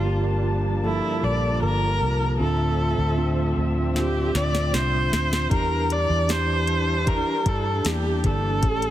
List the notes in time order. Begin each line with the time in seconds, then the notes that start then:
Already playing: G1 G2 D3 F3 G3 A#3 D4 F4 G4 A5
0.05 A#3 F4 G4
0.83 F3 A#3 E4 A4
1.23 A#1 D5
1.62 G1 A#3 F4 A#4
2.01 C2
2.39 D2 A2 D3 A3 C4 D4 F4 A4 E5
2.98 D2
3.17 C4 D4 F4
3.57 D2
3.94 C4 D4 F4 G4, snare
4.34 D2 D5, snare
4.55 snare
4.73 C2 C4 D4 F4 C5, snare
5.12 D2, snare
5.33 snare
5.50 E2 E3 G3 D4 E4 G4 A#4, kick, closed hi-hat
5.90 D5, closed hi-hat
6.09 E2
6.28 D4 E4 G4 C5, snare, closed hi-hat
6.67 closed hi-hat
7.06 D4 E4 G4 A#4, kick, closed hi-hat
7.46 G2 A4, kick, closed hi-hat
7.84 E2 A#3 D4 E4 G4, snare, closed hi-hat
8.24 G1 A4, kick, closed hi-hat
8.62 A1 A2 E3 A3 C#4 G4 A4, kick, closed hi-hat
8.82 closed hi-hat